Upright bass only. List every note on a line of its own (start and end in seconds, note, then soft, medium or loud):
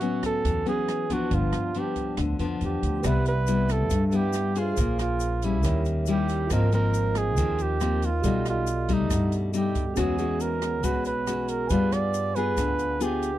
0.45 0.65 E2 medium
1.31 1.51 G1 loud
2.18 2.38 D2 medium
2.39 2.58 F2 medium
2.61 2.81 E2 medium
2.82 3.02 D2 medium
3.05 3.91 C2 medium
3.91 4.73 G2 medium
4.77 5.64 A#1 medium
5.64 6.47 D#2 medium
6.51 7.37 G#1 medium
7.37 8.20 D#2 medium
8.24 9.11 B1 medium
9.11 9.94 G2 medium
9.98 10.84 E2 medium
10.84 11.67 B1 medium
11.70 12.58 G2 medium
12.58 13.38 D2 medium